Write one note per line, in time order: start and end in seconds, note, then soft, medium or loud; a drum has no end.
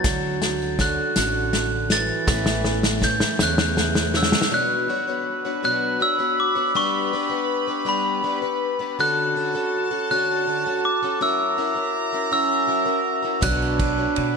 0.00 0.77 D3 medium
0.00 0.77 F#3 medium
0.00 0.84 A6 medium
0.04 0.97 D2 medium
0.04 0.79 C#4 medium
0.04 0.79 F#4 medium
0.04 0.80 A4 medium
0.04 kick loud
0.04 snare medium
0.04 closed hi-hat medium
0.04 tambourine medium
0.42 snare medium
0.42 closed hi-hat medium
0.62 tambourine soft
0.79 1.17 D3 medium
0.79 1.15 D3 medium
0.79 1.16 C#4 medium
0.79 1.16 F#4 medium
0.79 1.15 A4 medium
0.79 1.17 F#6 medium
0.79 kick medium
0.79 snare medium
0.79 closed hi-hat medium
1.16 2.09 A1 medium
1.16 1.88 D3 medium
1.16 1.92 D3 soft
1.16 1.92 C#4 medium
1.16 1.91 F#4 medium
1.16 1.89 A4 medium
1.16 1.94 F#6 medium
1.16 snare medium
1.16 closed hi-hat medium
1.16 tambourine medium
1.53 snare medium
1.53 closed hi-hat medium
1.90 2.99 E3 medium
1.90 2.28 C#4 soft
1.90 2.29 F#4 soft
1.90 2.28 A4 medium
1.90 3.07 A6 medium
1.90 snare medium
1.90 closed hi-hat medium
2.27 3.21 A1 loud
2.27 3.03 A2 medium
2.27 3.01 A3 medium
2.27 3.03 B3 medium
2.27 3.02 C#4 medium
2.27 3.04 E4 loud
2.27 kick loud
2.27 snare loud
2.27 tambourine medium
2.46 snare medium
2.46 tambourine soft
2.65 snare loud
2.83 snare medium
3.02 3.38 E3 medium
3.02 3.40 A3 medium
3.02 3.39 B3 medium
3.02 3.40 C#4 medium
3.02 3.39 E4 medium
3.02 3.42 G6 loud
3.02 kick medium
3.02 snare medium
3.20 snare loud
3.20 tambourine soft
3.39 4.32 E2 medium
3.39 4.15 A2 medium
3.39 4.11 C#3 medium
3.39 4.15 A3 medium
3.39 4.14 B3 medium
3.39 4.15 C#4 medium
3.39 4.13 E4 medium
3.39 4.18 F#6 medium
3.39 snare loud
3.39 tambourine medium
3.58 snare loud
3.77 snare loud
3.77 tambourine soft
3.95 snare loud
4.14 4.50 C#3 medium
4.14 4.50 B3 soft
4.14 4.51 C#4 soft
4.14 4.52 E4 medium
4.14 4.50 E6 medium
4.14 snare loud
4.23 snare loud
4.32 snare loud
4.42 snare loud
4.51 4.88 B2 medium
4.51 4.89 F#3 medium
4.51 4.87 B3 medium
4.51 4.88 D4 medium
4.51 6.73 D4 medium
4.51 6.72 F#4 medium
4.51 4.88 F#4 medium
4.51 6.73 B4 medium
4.51 4.89 C#5 loud
4.51 8.94 B5 medium
4.51 5.64 F#6 loud
4.88 5.07 B3 medium
4.88 5.07 D4 medium
4.88 5.07 F#4 medium
4.88 5.06 C#5 medium
5.07 5.46 B3 soft
5.07 5.45 D4 medium
5.07 5.44 F#4 medium
5.07 5.44 C#5 medium
5.45 5.63 B3 soft
5.45 5.63 D4 soft
5.45 5.63 F#4 medium
5.45 5.63 C#5 medium
5.63 6.00 B2 medium
5.63 6.01 F#3 medium
5.63 5.98 B3 medium
5.63 5.99 D4 medium
5.63 6.00 F#4 medium
5.63 6.00 C#5 loud
5.63 6.03 F#6 loud
6.00 6.19 B3 medium
6.00 6.19 D4 medium
6.00 6.18 F#4 medium
6.00 6.18 C#5 medium
6.00 6.36 E6 loud
6.19 6.56 B3 soft
6.19 6.55 D4 soft
6.19 6.55 F#4 medium
6.19 6.54 C#5 medium
6.40 6.77 D6 medium
6.55 6.74 B3 soft
6.55 6.74 D4 medium
6.55 6.75 F#4 medium
6.55 6.74 C#5 medium
6.74 7.12 G3 loud
6.74 7.12 B3 loud
6.74 7.12 D4 loud
6.74 8.95 G4 medium
6.74 8.95 B4 medium
6.74 7.12 B4 medium
6.74 7.91 C#6 loud
7.13 7.31 G3 medium
7.13 7.30 B3 medium
7.13 7.31 D4 medium
7.13 7.28 B4 medium
7.30 7.67 B3 medium
7.30 7.69 D4 medium
7.30 7.66 B4 medium
7.68 7.85 B3 medium
7.68 7.85 D4 soft
7.68 7.85 B4 medium
7.85 8.22 G3 medium
7.85 8.23 B3 medium
7.85 8.22 D4 medium
7.85 8.23 B4 loud
7.85 8.67 B5 medium
8.23 8.42 G3 medium
8.23 8.43 B3 medium
8.23 8.42 D4 medium
8.23 8.41 B4 medium
8.42 8.79 B3 medium
8.42 8.80 D4 soft
8.42 8.78 B4 medium
8.79 8.98 B3 medium
8.79 8.99 D4 medium
8.79 8.98 B4 medium
8.98 9.34 D3 medium
8.98 9.35 C#4 medium
8.98 11.18 F#4 medium
8.98 9.36 F#4 loud
8.98 9.36 A4 loud
8.98 11.19 A5 loud
8.98 10.10 F#6 loud
9.35 9.54 D3 medium
9.35 9.54 C#4 medium
9.35 9.54 F#4 medium
9.35 9.54 A4 medium
9.55 9.91 C#4 soft
9.55 9.90 F#4 soft
9.55 9.90 A4 medium
9.91 10.10 C#4 soft
9.91 10.09 F#4 medium
9.91 10.09 A4 medium
10.10 10.46 D3 medium
10.10 10.46 C#4 medium
10.10 10.47 F#4 medium
10.10 10.48 A4 loud
10.10 10.87 F#6 medium
10.47 10.65 D3 medium
10.47 10.65 C#4 medium
10.47 10.66 F#4 medium
10.47 10.65 A4 medium
10.66 11.03 C#4 medium
10.66 11.02 F#4 medium
10.66 11.01 A4 medium
10.85 11.22 D6 medium
11.03 11.20 C#4 soft
11.03 11.21 F#4 medium
11.03 11.21 A4 medium
11.21 11.56 F#3 medium
11.21 11.57 C#4 medium
11.21 11.57 E4 medium
11.21 14.37 F#4 medium
11.21 11.58 A#4 loud
11.21 13.42 E5 medium
11.21 13.42 A#5 loud
11.21 12.32 E6 loud
11.57 11.76 F#3 medium
11.57 11.76 C#4 medium
11.57 11.75 E4 medium
11.57 11.74 A#4 medium
11.75 12.13 C#4 soft
11.75 12.13 E4 medium
11.75 12.11 A#4 medium
12.13 12.30 C#4 soft
12.13 12.31 E4 medium
12.13 12.31 A#4 medium
12.31 12.65 F#3 medium
12.31 13.11 C#4 medium
12.31 12.66 C#4 medium
12.31 12.67 E4 medium
12.31 12.68 A#4 loud
12.31 13.12 E6 loud
12.67 12.86 F#3 medium
12.67 12.87 C#4 medium
12.67 12.85 E4 medium
12.67 12.84 A#4 medium
12.86 13.24 C#4 soft
12.86 13.23 E4 soft
12.86 13.21 A#4 medium
13.22 13.42 C#4 soft
13.22 13.41 E4 medium
13.22 13.42 A#4 medium
13.41 14.05 B1 loud
13.41 13.79 B2 medium
13.41 13.79 F#3 medium
13.41 13.78 B3 medium
13.41 14.37 D4 loud
13.41 13.79 D4 loud
13.41 14.37 D4 medium
13.41 13.80 F#4 loud
13.41 13.80 C#5 loud
13.41 14.37 B5 medium
13.41 14.37 F#6 loud
13.41 kick loud
13.41 ride loud
13.41 tambourine medium
13.62 tambourine soft
13.80 13.99 B3 medium
13.80 13.98 D4 medium
13.80 13.98 F#4 medium
13.80 13.97 C#5 medium
13.80 kick medium
13.80 ride medium
13.80 tambourine soft
13.98 14.36 B3 medium
13.98 14.36 D4 medium
13.98 14.35 F#4 medium
13.98 14.34 C#5 medium
14.16 14.37 B2 medium
14.16 ride medium